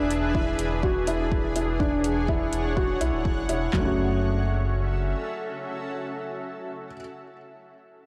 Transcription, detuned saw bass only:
0.00 0.54 E1 medium
0.59 2.48 E1 medium
2.53 2.96 E1 medium
3.01 3.10 B1 medium
3.13 3.37 D1 medium
3.37 3.46 F#1 medium
3.49 3.68 E1 medium
3.73 5.15 F#1 medium

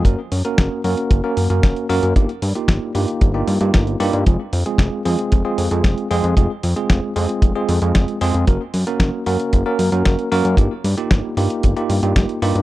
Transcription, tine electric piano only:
0.05 0.19 A#3 medium
0.05 0.19 C#4 medium
0.05 0.19 F#4 medium
0.05 0.19 A#4 medium
0.45 0.81 A#3 medium
0.45 0.81 C#4 medium
0.45 0.81 F#4 medium
0.45 0.81 A#4 medium
0.84 1.21 A#3 medium
0.84 1.21 C#4 medium
0.84 1.21 F#4 medium
0.84 1.21 A#4 medium
1.24 1.47 A#3 medium
1.24 1.47 C#4 medium
1.24 1.47 F#4 medium
1.24 1.47 A#4 medium
1.50 1.86 A#3 medium
1.50 1.86 C#4 medium
1.50 1.86 F#4 medium
1.50 1.86 A#4 medium
1.89 2.13 A#3 medium
1.89 2.13 C#4 medium
1.89 2.13 F#4 medium
1.89 2.13 A#4 loud
2.16 2.29 A#3 medium
2.16 2.29 D#4 medium
2.16 2.29 F4 medium
2.16 2.29 G4 medium
2.55 2.92 A#3 medium
2.55 2.92 D#4 medium
2.55 2.92 F4 medium
2.55 2.92 G4 medium
2.95 3.31 A#3 medium
2.95 3.31 D#4 medium
2.95 3.31 F4 medium
2.95 3.31 G4 medium
3.34 3.58 A#3 medium
3.34 3.58 D#4 medium
3.34 3.58 F4 medium
3.34 3.58 G4 medium
3.61 3.97 A#3 medium
3.61 3.97 D#4 medium
3.61 3.97 F4 medium
3.61 3.97 G4 medium
4.00 4.23 A#3 medium
4.00 4.23 D#4 medium
4.00 4.23 F4 medium
4.00 4.23 G4 loud
4.26 4.40 G#3 medium
4.26 4.40 C4 medium
4.26 4.40 F4 medium
4.26 4.40 G#4 medium
4.66 5.02 G#3 medium
4.66 5.02 C4 medium
4.66 5.02 F4 medium
4.66 5.02 G#4 medium
5.05 5.42 G#3 medium
5.05 5.42 C4 medium
5.05 5.42 F4 medium
5.05 5.42 G#4 medium
5.45 5.68 G#3 medium
5.45 5.68 C4 medium
5.45 5.68 F4 medium
5.45 5.68 G#4 medium
5.71 6.08 G#3 medium
5.71 6.08 C4 medium
5.71 6.08 F4 medium
5.71 6.07 G#4 medium
6.11 6.34 G#3 medium
6.11 6.34 C4 medium
6.11 6.34 F4 medium
6.11 6.34 G#4 loud
6.37 6.50 G#3 medium
6.37 6.50 C4 medium
6.37 6.50 F4 medium
6.37 6.50 G#4 medium
6.76 7.13 G#3 medium
6.76 7.13 C4 medium
6.76 7.13 F4 medium
6.76 7.13 G#4 medium
7.16 7.52 G#3 medium
7.16 7.52 C4 medium
7.16 7.52 F4 medium
7.16 7.52 G#4 medium
7.55 7.79 G#3 medium
7.55 7.79 C4 medium
7.55 7.79 F4 medium
7.55 7.79 G#4 medium
7.82 8.18 G#3 medium
7.82 8.18 C4 medium
7.82 8.18 F4 medium
7.82 8.18 G#4 medium
8.21 8.44 G#3 medium
8.21 8.44 C4 medium
8.21 8.44 F4 medium
8.21 8.44 G#4 loud
8.47 8.61 A#3 medium
8.47 8.61 C#4 medium
8.47 8.61 F#4 medium
8.47 8.61 A#4 medium
8.87 9.23 A#3 medium
8.87 9.23 C#4 medium
8.87 9.23 F#4 medium
8.87 9.23 A#4 medium
9.26 9.63 A#3 medium
9.26 9.63 C#4 medium
9.26 9.63 F#4 medium
9.26 9.63 A#4 medium
9.66 9.89 A#3 medium
9.66 9.89 C#4 medium
9.66 9.89 F#4 medium
9.66 9.89 A#4 loud
9.92 10.29 A#3 medium
9.92 10.29 C#4 medium
9.92 10.29 F#4 medium
9.92 10.29 A#4 medium
10.32 10.55 A#3 loud
10.32 10.55 C#4 medium
10.32 10.55 F#4 medium
10.32 10.55 A#4 loud
10.58 10.72 D#4 medium
10.58 10.72 F4 medium
10.58 10.72 G4 medium
10.98 11.34 A#3 medium
10.98 11.34 D#4 medium
10.98 11.34 F4 medium
10.98 11.34 G4 medium
11.37 11.73 A#3 medium
11.37 11.73 D#4 medium
11.37 11.73 F4 medium
11.37 11.73 G4 medium
11.76 12.00 A#3 medium
11.76 12.00 D#4 medium
11.76 12.00 F4 medium
11.76 12.00 G4 medium
12.03 12.39 A#3 medium
12.03 12.39 D#4 medium
12.03 12.39 F4 medium
12.03 12.39 G4 medium
12.42 12.62 A#3 medium
12.42 12.62 D#4 medium
12.42 12.62 F4 medium
12.42 12.62 G4 loud

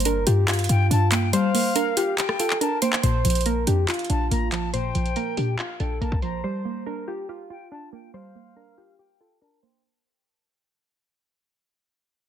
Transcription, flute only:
0.70 0.90 G5 medium
0.91 1.11 A5 medium
1.12 1.32 G5 medium
1.33 2.14 F5 loud
2.18 2.58 G5 medium
2.61 2.81 A5 medium
2.82 3.02 G5 medium
4.10 4.30 A5 medium
4.31 4.51 A#5 medium
4.52 4.73 A5 medium
4.74 5.55 G5 loud
5.59 5.79 F5 medium
5.80 6.00 G5 medium
6.02 6.22 A5 medium
6.23 6.43 A#5 medium
7.50 7.71 G5 medium
7.71 7.92 A5 medium
7.93 8.13 G5 medium
8.14 8.95 F5 loud
8.99 9.39 G5 medium
9.42 9.62 A5 medium
9.63 9.83 G5 medium

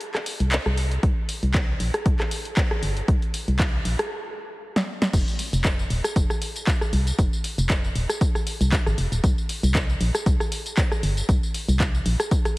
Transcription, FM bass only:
0.40 0.58 C2 medium
0.66 0.98 C2 loud
1.03 1.13 C2 loud
1.43 1.75 C2 loud
1.80 1.90 A#1 medium
2.06 2.16 C2 medium
2.83 3.02 G1 medium
3.08 3.18 C2 medium
3.48 3.80 C2 loud
3.85 3.95 A#1 medium
5.13 5.24 F1 loud
5.53 5.85 F1 loud
5.90 6.00 D#1 medium
6.16 6.26 F1 medium
6.93 7.12 C2 medium
7.19 7.29 F1 loud
7.58 7.90 F1 loud
7.96 8.06 D#1 medium
8.61 8.79 C2 medium
8.86 8.95 G#1 medium
8.98 9.08 F1 medium
9.12 9.20 D#1 loud
9.24 9.34 C2 loud
9.63 9.95 C2 loud
10.01 10.11 A#1 medium
10.26 10.36 C2 medium
11.03 11.22 G1 medium
11.29 11.39 C2 medium
11.68 12.01 C2 loud
12.06 12.16 A#1 medium

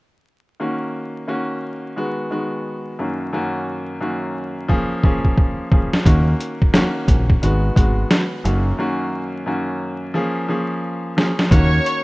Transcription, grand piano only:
0.60 1.24 D#3 medium
0.60 1.24 A#3 medium
0.60 1.25 C#4 medium
0.60 1.25 F#4 medium
1.27 1.95 D#3 medium
1.27 1.96 A#3 medium
1.27 1.97 C#4 medium
1.27 1.96 F#4 loud
1.96 2.29 D#3 medium
1.96 2.29 G#3 medium
1.96 2.29 B3 medium
1.96 2.29 F#4 loud
2.31 2.95 D#3 medium
2.31 2.95 G#3 medium
2.31 2.95 B3 medium
2.31 2.95 F#4 medium
2.99 3.31 F#2 medium
2.99 3.31 D#3 medium
2.99 3.31 A#3 medium
2.99 3.31 C#4 medium
2.99 3.32 F#4 medium
3.33 3.97 F#2 medium
3.33 3.97 D#3 medium
3.33 3.97 A#3 medium
3.33 3.97 C#4 medium
3.33 3.98 F#4 loud
4.01 4.69 F#2 medium
4.01 4.69 D#3 medium
4.01 4.67 A#3 medium
4.01 4.68 C#4 medium
4.01 4.70 F#4 medium
4.68 5.01 F3 loud
4.68 5.01 A#3 medium
4.68 5.01 C#4 medium
4.68 5.02 G#4 loud
5.03 5.67 F3 medium
5.03 5.68 A#3 medium
5.03 5.68 C#4 medium
5.03 5.68 G#4 loud
5.71 6.04 F3 medium
5.71 6.04 A#3 medium
5.71 6.04 C#4 medium
5.71 6.04 G#4 medium
6.05 6.69 D#3 medium
6.05 6.70 A#3 medium
6.05 6.70 C#4 medium
6.05 6.70 F#4 medium
6.73 7.41 D#3 medium
6.73 7.42 A#3 medium
6.73 7.42 C#4 medium
6.73 7.42 F#4 loud
7.42 7.74 D#3 medium
7.42 7.74 G#3 medium
7.42 7.75 B3 medium
7.42 7.75 F#4 loud
7.76 8.40 D#3 medium
7.76 8.40 G#3 medium
7.76 8.40 B3 medium
7.76 8.41 F#4 medium
8.44 8.76 F#2 medium
8.44 8.76 D#3 medium
8.44 8.77 A#3 medium
8.44 8.77 C#4 medium
8.44 8.77 F#4 medium
8.78 9.42 F#2 medium
8.78 9.43 D#3 medium
8.78 9.43 A#3 medium
8.78 9.43 C#4 medium
8.78 9.43 F#4 loud
9.46 10.15 F#2 medium
9.46 10.15 D#3 medium
9.46 10.13 A#3 medium
9.46 10.13 C#4 medium
9.46 10.15 F#4 loud
10.14 10.46 F3 loud
10.14 10.47 A#3 medium
10.14 10.47 C#4 medium
10.14 10.47 G#4 loud
10.48 11.13 F3 medium
10.48 11.13 A#3 medium
10.48 11.13 C#4 medium
10.48 11.14 G#4 loud
11.17 11.49 F3 medium
11.17 11.49 A#3 medium
11.17 11.50 C#4 medium
11.17 11.50 G#4 medium
11.51 12.04 D#3 medium
11.51 12.04 A#3 medium
11.51 12.04 C#4 medium
11.51 12.04 F#4 medium

